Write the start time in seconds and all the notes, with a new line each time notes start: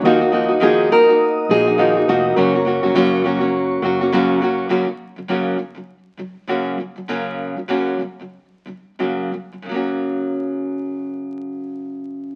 Already playing: A#4
0.02 D#2 D#3 F3 A#3 D#4 F#4 A#4 D#5 F5 D#6
0.07 F#4
0.21 A#3 D#4 F#4
0.32 F3 A#3 D#4 F#4
0.48 A#3 D#4 F#4
0.60 D#3 F3 A#3 D#4 F#4 G#4
0.90 F3 A#3 D#4 F#4 A#4
1.09 A#3 D#4 F#4
1.49 A#1 F3 A#3 D#4 F#4 G#4
1.67 A#3 D#4 F#4
1.77 D#3 F3 A#3 D#4 F#4 A#4 F5 F#5
1.97 A#3 D#4 F#4
2.08 F1 F3 A#3 D#4 F#4
2.34 F#1 F#2 C#3 F#3 A#3 C#4 F#4 A#4 C#5 C#6
2.55 F#3 A#3 C#4 F#4
2.65 F#3 A#3 C#4 F#4
2.83 F#1 F#3 A#3 C#4 F#4
2.94 F#1 F#2 C#3 F#3 A#3 C#4 F#4
3.24 F#3 A#3 C#4 F#4
3.40 F#3 A#3 C#4 F#4
3.82 F#1 F#3 A#3 C#4 F#4
4.01 F#3 A#3 C#4 F#4
4.12 F#2 C#3 F#3 A#3 C#4 F#4
4.41 F#3 A#3 C#4 F#4
4.69 F#2 C#3 F#3 A#3 C#4 F#4
4.87 F#2 C#3
5.16 F#2 C#3 F#3
5.28 F#2 C#3 F#3 A#3 C#4 F#4
5.58 F#2 F#3
5.75 F#2 C#3 F#3
6.17 F#2 C#3 F#3
6.47 F#2 C#3 F#3 A#3 C#4 F#4
6.78 F#2 C#3 F#3
6.96 F#2 C#3 F#3
7.08 F#2 C#3 F#3 A#3 C#4 F#4
7.57 F#2 C#3 F#3
7.68 F#2 C#3 F#3 A#3 C#4 F#4
7.99 F#2 C#3 F#3
8.19 F#2 C#3 F#3
8.66 F#2 C#3 F#3
8.99 F#2 C#3 F#3 A#3 C#4 F#4
9.32 F#2 F#3
9.52 F#2 C#3 F#3
9.62 F#2 C#3
9.69 F#3 A#3
9.74 C#4 F#4